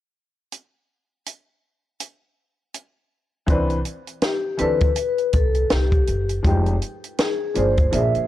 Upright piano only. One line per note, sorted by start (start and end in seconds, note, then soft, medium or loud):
3.47 3.75 E3 medium
3.47 3.76 C4 medium
3.47 3.77 D4 medium
3.47 3.77 B4 medium
4.57 4.86 E3 medium
4.57 4.87 C4 medium
4.57 4.88 D4 medium
4.57 4.88 A4 medium
6.43 6.72 F3 medium
6.43 6.72 G#3 medium
6.43 6.73 D#4 medium
6.47 6.74 G4 medium
7.54 7.83 F3 medium
7.54 7.83 A#3 medium
7.54 7.84 D4 medium
7.58 7.85 G#4 medium
7.91 8.27 F3 medium
7.91 8.27 A#3 medium
7.91 8.27 D4 medium
7.91 8.27 G#4 medium